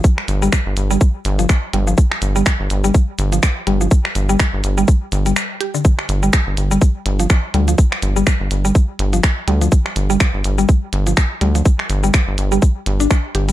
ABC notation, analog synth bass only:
X:1
M:4/4
L:1/16
Q:"Swing 16ths" 1/4=124
K:Cmix
V:1 name="Analog synth bass" clef=bass
z2 G,,,2 z G,,, G,,,2 z2 G,,,2 z2 G,,,2 | z2 G,,,2 z G,,, G,,,2 z2 G,,,2 z2 G,,,2 | z2 G,,,2 z G,,, G,,,2 z2 G,,,2 z4 | z2 G,,,2 z G,,, G,,,2 z2 G,,,2 z2 D,,2 |
z2 G,,,2 z G,,, G,,,2 z2 G,,,2 z2 D,,2 | z2 G,,,2 z G,,, G,,,2 z2 G,,,2 z2 D,,2 | z2 G,,,2 z G,,, G,,,2 z2 G,,,2 z2 G,,,2 |]